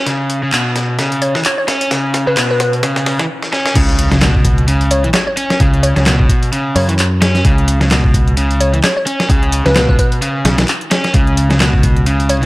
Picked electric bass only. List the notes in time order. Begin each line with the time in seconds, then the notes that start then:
3.75 C#2
5.60 C#2
5.96 C#2
6.76 F#2
7.45 C#2
9.30 C#2
9.66 C#2
10.45 B1
11.14 C#2